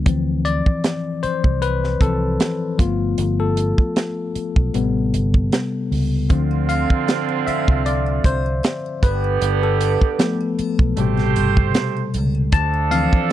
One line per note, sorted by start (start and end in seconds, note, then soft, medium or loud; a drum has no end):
0.06 0.60 D2 loud
0.06 0.59 E3 medium
0.06 0.59 F3 soft
0.06 0.60 C4 medium
0.06 kick loud
0.06 closed hi-hat medium
0.45 1.26 D5 loud
0.45 closed hi-hat medium
0.66 kick medium
0.84 snare loud
0.84 closed hi-hat medium
1.23 1.59 C5 medium
1.23 muted fingered electric bass stroke soft
1.23 closed hi-hat medium
1.44 1.96 C2 medium
1.44 kick medium
1.62 1.80 B4 medium
1.62 closed hi-hat medium
1.84 snare soft
2.01 2.36 C2 medium
2.01 2.36 E3 soft
2.01 2.36 F3 soft
2.01 2.37 C4 soft
2.01 2.76 A4 medium
2.01 kick medium
2.01 closed hi-hat medium
2.40 snare loud
2.40 closed hi-hat medium
2.78 3.14 G1 medium
2.78 3.32 F3 medium
2.78 3.32 A3 soft
2.78 3.33 B3 medium
2.78 3.35 F4 medium
2.78 kick loud
2.78 closed hi-hat medium
3.18 3.73 G1 loud
3.18 closed hi-hat medium
3.40 5.31 A4 medium
3.57 closed hi-hat medium
3.78 kick medium
3.96 snare loud
3.96 closed hi-hat medium
4.35 muted fingered electric bass stroke soft
4.35 closed hi-hat medium
4.56 4.73 B1 medium
4.56 kick medium
4.74 5.15 A1 medium
4.74 5.27 C3 medium
4.74 5.28 G3 medium
4.74 5.28 B3 medium
4.74 closed hi-hat medium
5.14 5.49 G1 medium
5.14 closed hi-hat medium
5.34 kick medium
5.52 snare loud
5.52 closed hi-hat medium
5.91 6.26 C#2 medium
5.91 open hi-hat medium
6.30 6.84 D2 loud
6.30 8.99 D3 soft
6.30 8.60 D3 medium
6.30 8.99 F3 soft
6.30 8.60 C4 medium
6.30 8.99 C4 medium
6.30 8.60 F4 medium
6.30 kick loud
6.30 closed hi-hat medium
6.30 muted triangle soft
6.51 muted triangle soft
6.69 7.43 F5 loud
6.69 closed hi-hat medium
6.69 triangle medium
6.90 kick medium
6.90 muted triangle soft
7.08 snare loud
7.08 closed hi-hat medium
7.08 muted triangle soft
7.29 muted triangle medium
7.47 7.64 E5 medium
7.47 muted fingered electric bass stroke soft
7.47 closed hi-hat medium
7.47 triangle medium
7.68 8.19 C2 medium
7.68 kick medium
7.68 muted triangle soft
7.86 8.22 D5 medium
7.86 closed hi-hat medium
7.86 muted triangle soft
8.06 muted triangle soft
8.24 8.60 C2 medium
8.24 9.05 C5 medium
8.24 kick medium
8.24 closed hi-hat medium
8.24 triangle medium
8.46 muted triangle soft
8.63 snare loud
8.63 closed hi-hat medium
8.63 muted triangle medium
8.86 muted triangle soft
9.03 9.38 G1 medium
9.03 10.55 D3 medium
9.03 10.55 B3 medium
9.03 10.55 G4 medium
9.03 9.65 B4 medium
9.03 kick medium
9.03 closed hi-hat medium
9.03 triangle medium
9.24 muted triangle soft
9.41 9.96 G1 loud
9.41 closed hi-hat medium
9.41 muted triangle soft
9.63 11.54 A4 medium
9.63 muted triangle soft
9.81 closed hi-hat medium
9.81 triangle medium
10.02 kick medium
10.02 muted triangle soft
10.19 10.93 F3 medium
10.19 10.93 A3 medium
10.19 10.94 B3 medium
10.19 snare loud
10.19 closed hi-hat medium
10.19 muted triangle soft
10.41 muted triangle medium
10.59 muted fingered electric bass stroke soft
10.59 closed hi-hat medium
10.59 triangle medium
10.79 10.96 B1 medium
10.79 kick medium
10.79 muted triangle soft
10.97 11.38 A1 medium
10.97 12.10 B2 medium
10.97 12.10 C3 medium
10.97 12.10 G3 medium
10.97 12.12 A3 medium
10.97 12.12 G4 medium
10.97 12.12 C5 medium
10.97 closed hi-hat medium
10.97 muted triangle soft
11.17 snare soft
11.17 muted triangle soft
11.36 11.72 G1 medium
11.36 closed hi-hat medium
11.36 triangle medium
11.57 kick medium
11.57 muted triangle soft
11.74 snare loud
11.74 closed hi-hat medium
11.74 muted triangle medium
11.97 muted triangle medium
12.14 12.49 C#2 medium
12.14 closed hi-hat medium
12.14 triangle medium
12.35 muted triangle soft
12.52 13.07 D2 loud
12.52 13.32 F3 medium
12.52 13.32 D4 medium
12.52 13.32 A4 medium
12.52 12.93 A5 loud
12.52 kick loud
12.52 closed hi-hat medium
12.52 muted triangle medium
12.74 muted triangle soft
12.91 13.32 E3 medium
12.91 13.32 F3 soft
12.91 13.32 C4 medium
12.91 13.32 F5 loud
12.91 closed hi-hat medium
12.91 triangle medium
13.13 kick medium
13.13 muted triangle soft